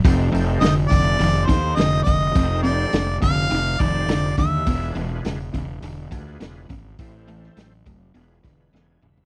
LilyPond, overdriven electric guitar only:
\new Staff \with { instrumentName = "Overdriven electric guitar" } { \clef bass \time 4/4 \key f \lydian \tempo 4 = 104 <f, c>8 <f, c>8 <f, d>8 <f, d>8 <f, ees>8 <f, ees>8 <f, d>8 <f, d>8 | <f, c>8 <f, c>8 <f, d>8 <f, d>8 <f, ees>8 <f, ees>8 <f, d>8 <f, d>8 | <e, b,>8 <e, b,>8 <e, cis>8 <e, cis>8 <e, d>8 <e, d>8 <e, cis>8 <e, cis>8 | <a, e>8 <a, e>8 <a, fis>8 <a, fis>8 <e, b,>8 <e, d>8 <e, cis>8 <e, cis>8 | }